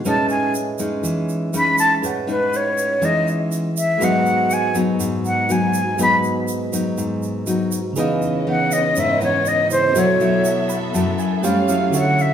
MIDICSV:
0, 0, Header, 1, 6, 480
1, 0, Start_track
1, 0, Tempo, 495050
1, 46, Time_signature, 4, 2, 24, 8
1, 11961, End_track
2, 0, Start_track
2, 0, Title_t, "Flute"
2, 0, Program_c, 0, 73
2, 75, Note_on_c, 0, 81, 79
2, 285, Note_off_c, 0, 81, 0
2, 292, Note_on_c, 0, 80, 85
2, 513, Note_off_c, 0, 80, 0
2, 1523, Note_on_c, 0, 83, 82
2, 1729, Note_off_c, 0, 83, 0
2, 1738, Note_on_c, 0, 81, 91
2, 1879, Note_off_c, 0, 81, 0
2, 2228, Note_on_c, 0, 71, 73
2, 2487, Note_on_c, 0, 73, 67
2, 2501, Note_off_c, 0, 71, 0
2, 2957, Note_on_c, 0, 75, 78
2, 2972, Note_off_c, 0, 73, 0
2, 3182, Note_off_c, 0, 75, 0
2, 3658, Note_on_c, 0, 76, 84
2, 3918, Note_on_c, 0, 78, 80
2, 3932, Note_off_c, 0, 76, 0
2, 4396, Note_on_c, 0, 80, 95
2, 4410, Note_off_c, 0, 78, 0
2, 4621, Note_off_c, 0, 80, 0
2, 5102, Note_on_c, 0, 78, 82
2, 5350, Note_on_c, 0, 80, 77
2, 5365, Note_off_c, 0, 78, 0
2, 5818, Note_off_c, 0, 80, 0
2, 5840, Note_on_c, 0, 83, 86
2, 5974, Note_off_c, 0, 83, 0
2, 8237, Note_on_c, 0, 78, 82
2, 8465, Note_on_c, 0, 75, 83
2, 8479, Note_off_c, 0, 78, 0
2, 8722, Note_on_c, 0, 76, 86
2, 8737, Note_off_c, 0, 75, 0
2, 8944, Note_off_c, 0, 76, 0
2, 8952, Note_on_c, 0, 73, 84
2, 9195, Note_on_c, 0, 75, 85
2, 9209, Note_off_c, 0, 73, 0
2, 9417, Note_off_c, 0, 75, 0
2, 9423, Note_on_c, 0, 72, 90
2, 9687, Note_on_c, 0, 73, 74
2, 9702, Note_off_c, 0, 72, 0
2, 10388, Note_off_c, 0, 73, 0
2, 11614, Note_on_c, 0, 78, 77
2, 11845, Note_on_c, 0, 76, 79
2, 11859, Note_off_c, 0, 78, 0
2, 11961, Note_off_c, 0, 76, 0
2, 11961, End_track
3, 0, Start_track
3, 0, Title_t, "Tine electric piano"
3, 0, Program_c, 1, 4
3, 0, Control_c, 1, 64, 127
3, 43, Note_on_c, 1, 68, 46
3, 56, Note_on_c, 1, 71, 48
3, 57, Control_c, 1, 64, 0
3, 67, Note_on_c, 1, 73, 48
3, 77, Note_on_c, 1, 75, 62
3, 229, Control_c, 1, 64, 127
3, 1927, Note_off_c, 1, 68, 0
3, 1934, Note_off_c, 1, 71, 0
3, 1939, Note_off_c, 1, 73, 0
3, 1944, Note_off_c, 1, 75, 0
3, 1964, Note_on_c, 1, 68, 49
3, 1977, Note_on_c, 1, 71, 49
3, 1986, Note_on_c, 1, 73, 46
3, 2001, Note_on_c, 1, 78, 59
3, 3846, Note_off_c, 1, 68, 0
3, 3853, Note_off_c, 1, 71, 0
3, 3857, Note_on_c, 1, 56, 54
3, 3858, Note_off_c, 1, 73, 0
3, 3865, Note_off_c, 1, 78, 0
3, 3870, Note_on_c, 1, 66, 51
3, 3886, Note_on_c, 1, 68, 50
3, 3900, Control_c, 1, 64, 0
3, 3901, Note_on_c, 1, 71, 51
3, 3914, Note_on_c, 1, 75, 63
3, 4074, Control_c, 1, 64, 127
3, 5752, Note_off_c, 1, 56, 0
3, 5759, Note_off_c, 1, 66, 0
3, 5767, Note_off_c, 1, 68, 0
3, 5775, Note_off_c, 1, 71, 0
3, 5781, Note_off_c, 1, 75, 0
3, 5781, Note_on_c, 1, 56, 56
3, 5792, Note_on_c, 1, 66, 46
3, 5807, Note_on_c, 1, 68, 51
3, 5823, Note_on_c, 1, 71, 53
3, 5838, Note_on_c, 1, 75, 59
3, 7675, Note_off_c, 1, 56, 0
3, 7680, Note_off_c, 1, 66, 0
3, 7688, Note_off_c, 1, 68, 0
3, 7690, Note_on_c, 1, 49, 59
3, 7696, Note_off_c, 1, 71, 0
3, 7704, Note_off_c, 1, 75, 0
3, 7721, Note_on_c, 1, 68, 58
3, 7736, Note_on_c, 1, 71, 58
3, 7739, Control_c, 1, 64, 0
3, 7752, Note_on_c, 1, 75, 69
3, 7887, Control_c, 1, 64, 127
3, 9354, Note_off_c, 1, 49, 0
3, 9370, Note_off_c, 1, 68, 0
3, 9378, Note_off_c, 1, 71, 0
3, 9386, Note_off_c, 1, 75, 0
3, 9398, Note_on_c, 1, 49, 38
3, 9403, Note_on_c, 1, 64, 33
3, 9413, Note_on_c, 1, 68, 35
3, 9418, Note_on_c, 1, 71, 36
3, 9429, Note_on_c, 1, 73, 42
3, 9619, Note_on_c, 1, 59, 53
3, 9635, Note_on_c, 1, 66, 50
3, 9642, Note_off_c, 1, 49, 0
3, 9645, Note_off_c, 1, 64, 0
3, 9650, Note_off_c, 1, 68, 0
3, 9652, Note_off_c, 1, 71, 0
3, 9652, Note_off_c, 1, 73, 0
3, 9652, Note_on_c, 1, 69, 50
3, 9660, Control_c, 1, 64, 0
3, 9663, Note_on_c, 1, 73, 51
3, 9677, Note_on_c, 1, 76, 62
3, 9836, Control_c, 1, 64, 127
3, 10370, Note_on_c, 1, 83, 57
3, 10592, Note_off_c, 1, 83, 0
3, 10613, Note_on_c, 1, 81, 59
3, 10834, Note_off_c, 1, 81, 0
3, 10850, Note_on_c, 1, 80, 54
3, 11045, Note_off_c, 1, 59, 0
3, 11053, Note_off_c, 1, 66, 0
3, 11062, Note_off_c, 1, 69, 0
3, 11068, Note_off_c, 1, 73, 0
3, 11070, Note_on_c, 1, 57, 55
3, 11072, Note_off_c, 1, 80, 0
3, 11075, Note_off_c, 1, 76, 0
3, 11080, Note_on_c, 1, 67, 55
3, 11086, Note_on_c, 1, 79, 53
3, 11090, Note_on_c, 1, 72, 58
3, 11093, Note_on_c, 1, 73, 52
3, 11100, Note_on_c, 1, 77, 68
3, 11102, Control_c, 1, 64, 0
3, 11245, Control_c, 1, 64, 127
3, 11310, Note_off_c, 1, 79, 0
3, 11313, Note_off_c, 1, 77, 0
3, 11325, Note_on_c, 1, 77, 59
3, 11540, Note_on_c, 1, 50, 53
3, 11550, Note_off_c, 1, 77, 0
3, 11552, Note_on_c, 1, 66, 52
3, 11559, Note_off_c, 1, 57, 0
3, 11565, Note_off_c, 1, 67, 0
3, 11568, Note_on_c, 1, 69, 48
3, 11569, Note_off_c, 1, 72, 0
3, 11571, Note_off_c, 1, 73, 0
3, 11582, Control_c, 1, 64, 0
3, 11582, Note_on_c, 1, 73, 53
3, 11600, Note_on_c, 1, 76, 58
3, 11772, Control_c, 1, 64, 127
3, 11961, Note_off_c, 1, 50, 0
3, 11961, Note_off_c, 1, 66, 0
3, 11961, Note_off_c, 1, 69, 0
3, 11961, Note_off_c, 1, 73, 0
3, 11961, Note_off_c, 1, 76, 0
3, 11961, End_track
4, 0, Start_track
4, 0, Title_t, "String section"
4, 0, Program_c, 2, 48
4, 7712, Note_on_c, 2, 75, 84
4, 7716, Note_on_c, 2, 71, 68
4, 7717, Note_on_c, 2, 61, 75
4, 9621, Note_off_c, 2, 75, 0
4, 9622, Note_off_c, 2, 71, 0
4, 9623, Note_off_c, 2, 61, 0
4, 9636, Note_on_c, 2, 66, 66
4, 9636, Note_on_c, 2, 69, 74
4, 9640, Note_on_c, 2, 76, 80
4, 9641, Note_on_c, 2, 59, 74
4, 11068, Note_off_c, 2, 66, 0
4, 11070, Note_off_c, 2, 76, 0
4, 11071, Note_off_c, 2, 59, 0
4, 11097, Note_on_c, 2, 61, 69
4, 11099, Note_on_c, 2, 67, 62
4, 11101, Note_on_c, 2, 77, 73
4, 11544, Note_off_c, 2, 69, 0
4, 11565, Note_on_c, 2, 66, 70
4, 11565, Note_on_c, 2, 73, 74
4, 11567, Note_on_c, 2, 76, 86
4, 11568, Note_off_c, 2, 61, 0
4, 11569, Note_off_c, 2, 67, 0
4, 11570, Note_off_c, 2, 77, 0
4, 11961, Note_off_c, 2, 66, 0
4, 11961, Note_off_c, 2, 73, 0
4, 11961, Note_off_c, 2, 76, 0
4, 11961, End_track
5, 0, Start_track
5, 0, Title_t, "Nylon-string guitar"
5, 0, Program_c, 3, 24
5, 51, Note_on_c, 3, 56, 59
5, 52, Note_on_c, 3, 45, 71
5, 56, Note_on_c, 3, 61, 62
5, 61, Note_on_c, 3, 63, 68
5, 525, Note_off_c, 3, 56, 0
5, 528, Note_off_c, 3, 61, 0
5, 531, Note_off_c, 3, 63, 0
5, 767, Note_on_c, 3, 56, 58
5, 774, Note_on_c, 3, 61, 64
5, 774, Note_on_c, 3, 63, 59
5, 986, Note_off_c, 3, 45, 0
5, 1001, Note_on_c, 3, 52, 73
5, 1450, Note_off_c, 3, 56, 0
5, 1451, Note_off_c, 3, 61, 0
5, 1452, Note_off_c, 3, 63, 0
5, 1486, Note_on_c, 3, 56, 57
5, 1490, Note_on_c, 3, 61, 54
5, 1496, Note_on_c, 3, 63, 66
5, 1940, Note_off_c, 3, 52, 0
5, 1963, Note_off_c, 3, 56, 0
5, 1966, Note_off_c, 3, 61, 0
5, 1967, Note_off_c, 3, 63, 0
5, 1969, Note_on_c, 3, 45, 73
5, 2203, Note_on_c, 3, 56, 60
5, 2207, Note_on_c, 3, 61, 64
5, 2211, Note_on_c, 3, 63, 59
5, 2886, Note_off_c, 3, 56, 0
5, 2888, Note_off_c, 3, 61, 0
5, 2890, Note_off_c, 3, 63, 0
5, 2904, Note_off_c, 3, 45, 0
5, 2922, Note_on_c, 3, 52, 75
5, 2925, Note_on_c, 3, 56, 54
5, 2928, Note_on_c, 3, 61, 55
5, 2932, Note_on_c, 3, 63, 63
5, 3570, Note_off_c, 3, 56, 0
5, 3571, Note_off_c, 3, 61, 0
5, 3574, Note_off_c, 3, 63, 0
5, 3861, Note_off_c, 3, 52, 0
5, 3882, Note_on_c, 3, 44, 74
5, 3888, Note_on_c, 3, 54, 65
5, 3890, Note_on_c, 3, 59, 58
5, 3895, Note_on_c, 3, 63, 64
5, 4567, Note_off_c, 3, 54, 0
5, 4570, Note_off_c, 3, 59, 0
5, 4572, Note_off_c, 3, 63, 0
5, 4601, Note_on_c, 3, 54, 62
5, 4605, Note_on_c, 3, 59, 58
5, 4611, Note_on_c, 3, 63, 61
5, 4821, Note_off_c, 3, 44, 0
5, 4846, Note_on_c, 3, 44, 76
5, 5285, Note_off_c, 3, 54, 0
5, 5287, Note_off_c, 3, 59, 0
5, 5289, Note_off_c, 3, 63, 0
5, 5322, Note_on_c, 3, 54, 65
5, 5326, Note_on_c, 3, 59, 59
5, 5331, Note_on_c, 3, 63, 63
5, 5633, Note_off_c, 3, 54, 0
5, 5635, Note_off_c, 3, 59, 0
5, 5637, Note_off_c, 3, 63, 0
5, 5782, Note_off_c, 3, 44, 0
5, 5801, Note_on_c, 3, 44, 78
5, 5804, Note_on_c, 3, 54, 55
5, 5804, Note_on_c, 3, 59, 60
5, 5812, Note_on_c, 3, 63, 69
5, 6484, Note_off_c, 3, 54, 0
5, 6487, Note_off_c, 3, 59, 0
5, 6489, Note_off_c, 3, 63, 0
5, 6519, Note_on_c, 3, 54, 55
5, 6526, Note_on_c, 3, 59, 56
5, 6530, Note_on_c, 3, 63, 62
5, 6740, Note_off_c, 3, 44, 0
5, 6763, Note_on_c, 3, 44, 68
5, 7204, Note_off_c, 3, 54, 0
5, 7208, Note_off_c, 3, 59, 0
5, 7208, Note_off_c, 3, 63, 0
5, 7240, Note_on_c, 3, 54, 55
5, 7244, Note_on_c, 3, 59, 51
5, 7247, Note_on_c, 3, 63, 61
5, 7552, Note_off_c, 3, 54, 0
5, 7554, Note_off_c, 3, 59, 0
5, 7555, Note_off_c, 3, 63, 0
5, 7700, Note_off_c, 3, 44, 0
5, 7725, Note_on_c, 3, 49, 70
5, 7727, Note_on_c, 3, 52, 59
5, 7730, Note_on_c, 3, 59, 56
5, 7732, Note_on_c, 3, 63, 65
5, 8167, Note_off_c, 3, 52, 0
5, 8168, Note_off_c, 3, 59, 0
5, 8170, Note_off_c, 3, 63, 0
5, 8210, Note_on_c, 3, 52, 58
5, 8215, Note_on_c, 3, 59, 60
5, 8217, Note_on_c, 3, 63, 59
5, 8662, Note_off_c, 3, 49, 0
5, 8694, Note_on_c, 3, 44, 73
5, 8890, Note_off_c, 3, 52, 0
5, 8891, Note_off_c, 3, 59, 0
5, 8893, Note_off_c, 3, 63, 0
5, 8927, Note_on_c, 3, 52, 55
5, 8932, Note_on_c, 3, 59, 59
5, 8938, Note_on_c, 3, 63, 62
5, 9627, Note_off_c, 3, 44, 0
5, 9628, Note_off_c, 3, 52, 0
5, 9630, Note_off_c, 3, 59, 0
5, 9632, Note_off_c, 3, 63, 0
5, 9650, Note_on_c, 3, 47, 77
5, 9651, Note_on_c, 3, 54, 65
5, 9657, Note_on_c, 3, 57, 55
5, 9659, Note_on_c, 3, 64, 64
5, 9850, Note_off_c, 3, 54, 0
5, 9852, Note_off_c, 3, 57, 0
5, 9854, Note_off_c, 3, 64, 0
5, 9895, Note_on_c, 3, 54, 64
5, 9899, Note_on_c, 3, 57, 69
5, 9904, Note_on_c, 3, 64, 68
5, 10573, Note_off_c, 3, 54, 0
5, 10575, Note_off_c, 3, 57, 0
5, 10577, Note_off_c, 3, 64, 0
5, 10586, Note_off_c, 3, 47, 0
5, 10609, Note_on_c, 3, 42, 68
5, 10613, Note_on_c, 3, 54, 62
5, 10614, Note_on_c, 3, 57, 59
5, 10620, Note_on_c, 3, 64, 56
5, 11065, Note_off_c, 3, 42, 0
5, 11071, Note_off_c, 3, 54, 0
5, 11072, Note_off_c, 3, 57, 0
5, 11075, Note_off_c, 3, 64, 0
5, 11089, Note_on_c, 3, 55, 67
5, 11093, Note_on_c, 3, 61, 65
5, 11097, Note_on_c, 3, 65, 62
5, 11230, Note_off_c, 3, 55, 0
5, 11232, Note_off_c, 3, 61, 0
5, 11234, Note_off_c, 3, 65, 0
5, 11329, Note_on_c, 3, 54, 56
5, 11337, Note_on_c, 3, 61, 60
5, 11340, Note_on_c, 3, 64, 67
5, 11572, Note_on_c, 3, 50, 76
5, 11961, Note_off_c, 3, 50, 0
5, 11961, Note_off_c, 3, 54, 0
5, 11961, Note_off_c, 3, 61, 0
5, 11961, Note_off_c, 3, 64, 0
5, 11961, End_track
6, 0, Start_track
6, 0, Title_t, "Drums"
6, 49, Note_on_c, 9, 82, 62
6, 146, Note_off_c, 9, 82, 0
6, 284, Note_on_c, 9, 82, 26
6, 381, Note_off_c, 9, 82, 0
6, 529, Note_on_c, 9, 82, 55
6, 625, Note_off_c, 9, 82, 0
6, 761, Note_on_c, 9, 82, 65
6, 858, Note_off_c, 9, 82, 0
6, 1010, Note_on_c, 9, 82, 65
6, 1107, Note_off_c, 9, 82, 0
6, 1251, Note_on_c, 9, 82, 28
6, 1348, Note_off_c, 9, 82, 0
6, 1489, Note_on_c, 9, 82, 55
6, 1586, Note_off_c, 9, 82, 0
6, 1726, Note_on_c, 9, 82, 68
6, 1823, Note_off_c, 9, 82, 0
6, 1974, Note_on_c, 9, 82, 66
6, 2071, Note_off_c, 9, 82, 0
6, 2215, Note_on_c, 9, 82, 25
6, 2312, Note_off_c, 9, 82, 0
6, 2456, Note_on_c, 9, 82, 57
6, 2553, Note_off_c, 9, 82, 0
6, 2694, Note_on_c, 9, 82, 69
6, 2791, Note_off_c, 9, 82, 0
6, 2932, Note_on_c, 9, 82, 62
6, 3029, Note_off_c, 9, 82, 0
6, 3177, Note_on_c, 9, 82, 28
6, 3274, Note_off_c, 9, 82, 0
6, 3412, Note_on_c, 9, 82, 52
6, 3509, Note_off_c, 9, 82, 0
6, 3655, Note_on_c, 9, 82, 70
6, 3752, Note_off_c, 9, 82, 0
6, 3891, Note_on_c, 9, 82, 64
6, 3988, Note_off_c, 9, 82, 0
6, 4131, Note_on_c, 9, 82, 28
6, 4228, Note_off_c, 9, 82, 0
6, 4368, Note_on_c, 9, 82, 54
6, 4465, Note_off_c, 9, 82, 0
6, 4604, Note_on_c, 9, 82, 69
6, 4701, Note_off_c, 9, 82, 0
6, 4849, Note_on_c, 9, 82, 70
6, 4946, Note_off_c, 9, 82, 0
6, 5091, Note_on_c, 9, 82, 28
6, 5188, Note_off_c, 9, 82, 0
6, 5328, Note_on_c, 9, 82, 57
6, 5425, Note_off_c, 9, 82, 0
6, 5563, Note_on_c, 9, 82, 68
6, 5660, Note_off_c, 9, 82, 0
6, 5805, Note_on_c, 9, 82, 64
6, 5902, Note_off_c, 9, 82, 0
6, 6046, Note_on_c, 9, 82, 28
6, 6143, Note_off_c, 9, 82, 0
6, 6282, Note_on_c, 9, 82, 56
6, 6379, Note_off_c, 9, 82, 0
6, 6527, Note_on_c, 9, 82, 68
6, 6624, Note_off_c, 9, 82, 0
6, 6766, Note_on_c, 9, 82, 63
6, 6863, Note_off_c, 9, 82, 0
6, 7005, Note_on_c, 9, 82, 29
6, 7102, Note_off_c, 9, 82, 0
6, 7241, Note_on_c, 9, 82, 59
6, 7338, Note_off_c, 9, 82, 0
6, 7483, Note_on_c, 9, 82, 67
6, 7580, Note_off_c, 9, 82, 0
6, 7718, Note_on_c, 9, 82, 67
6, 7815, Note_off_c, 9, 82, 0
6, 7970, Note_on_c, 9, 82, 26
6, 8067, Note_off_c, 9, 82, 0
6, 8449, Note_on_c, 9, 82, 66
6, 8546, Note_off_c, 9, 82, 0
6, 8685, Note_on_c, 9, 82, 69
6, 8782, Note_off_c, 9, 82, 0
6, 8930, Note_on_c, 9, 82, 26
6, 9027, Note_off_c, 9, 82, 0
6, 9168, Note_on_c, 9, 82, 54
6, 9265, Note_off_c, 9, 82, 0
6, 9410, Note_on_c, 9, 82, 66
6, 9507, Note_off_c, 9, 82, 0
6, 9652, Note_on_c, 9, 82, 66
6, 9749, Note_off_c, 9, 82, 0
6, 9893, Note_on_c, 9, 82, 27
6, 9990, Note_off_c, 9, 82, 0
6, 10129, Note_on_c, 9, 82, 58
6, 10226, Note_off_c, 9, 82, 0
6, 10368, Note_on_c, 9, 82, 69
6, 10465, Note_off_c, 9, 82, 0
6, 10612, Note_on_c, 9, 82, 69
6, 10709, Note_off_c, 9, 82, 0
6, 10849, Note_on_c, 9, 82, 31
6, 10946, Note_off_c, 9, 82, 0
6, 11090, Note_on_c, 9, 82, 59
6, 11187, Note_off_c, 9, 82, 0
6, 11331, Note_on_c, 9, 82, 68
6, 11428, Note_off_c, 9, 82, 0
6, 11571, Note_on_c, 9, 82, 66
6, 11668, Note_off_c, 9, 82, 0
6, 11814, Note_on_c, 9, 82, 27
6, 11911, Note_off_c, 9, 82, 0
6, 11961, End_track
0, 0, End_of_file